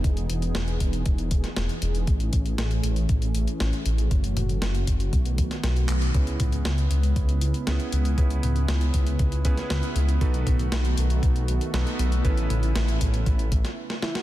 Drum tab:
HH |xxxxxxxxxxxxxxxx|xxxxxxxxxxxxxxxx|xxxxxxxxxxxxxxxx|xxxxxxxxxxxxxxxx|
CP |----------------|----------------|--------------x-|----------------|
SD |----o------oo---|----o-------o---|----o------oo---|----o-------o---|
T2 |----------------|----------------|--o-------------|--o-------------|
BD |o-----o-o-o-----|o-o-----o-------|o-----o-o-o-----|o-o-----o-------|

HH |xxxxxxxxxxxxxxxx|xxxxxxxxxxxxxxxx|xxxxxxxxxxxx----|
CP |----------------|----------------|----------------|
SD |----o------oo---|----o-------o---|----o------o-ooo|
T2 |--o-------------|--o-------------|--o-------------|
BD |o-----o-o-o-----|o-o-----o-------|o-----o-o-o-----|